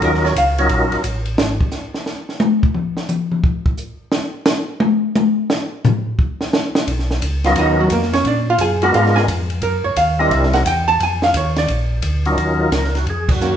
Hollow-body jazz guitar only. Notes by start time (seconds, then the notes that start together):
0.04 A#4
0.25 C#5
0.38 F5
0.59 C#5
7.45 F4 F5
7.59 D#4 D#5
7.80 F#3 F#4
7.92 A#3 A#4
8.13 C#4 C#5
8.27 D4 D5
8.50 F4 F5
8.61 G#4 G#5
8.83 F#4 F#5
8.95 F4 F5
9.16 G#4 G#5
9.63 A#4
9.84 C#5
9.97 F5
10.20 D#5
10.32 E5
10.54 F#5
10.67 G5
10.88 A5
11.03 G#5
11.24 F5
11.37 C#5
11.58 D5
13.41 D#3 A#3 C#4 F#4